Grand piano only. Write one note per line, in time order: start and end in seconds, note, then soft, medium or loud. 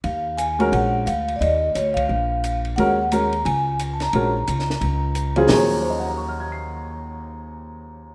0.59 1.04 G#3 medium
0.59 1.04 C#4 medium
0.59 1.05 F#4 medium
0.59 1.05 A#4 medium
2.78 2.97 G#3 medium
2.78 2.97 C#4 medium
2.78 2.97 F#4 medium
2.78 2.98 A#4 medium
3.12 3.31 G#3 soft
3.12 3.31 C#4 soft
3.12 3.31 F#4 soft
3.12 3.32 A#4 medium
4.14 4.33 G#3 medium
4.14 4.33 C#4 medium
4.14 4.33 F#4 medium
4.14 4.33 A#4 medium
5.36 5.48 C#3 medium
5.36 5.48 F#3 medium
5.36 5.48 C4 medium
5.36 5.48 F4 medium
5.36 5.49 G#4 medium
5.48 8.15 D#2 medium
5.48 8.15 D#3 medium
5.48 8.15 F3 medium
5.48 8.15 F#3 medium
5.48 8.15 C#4 medium
5.48 8.15 G#4 medium
5.83 8.15 C5 soft
5.90 8.15 D#5 soft
5.99 8.15 F#5 soft
6.07 8.15 A#5 soft
6.17 8.15 C#6 soft
6.29 8.15 F6 soft
6.40 8.15 G#6 soft
6.52 8.15 C7 soft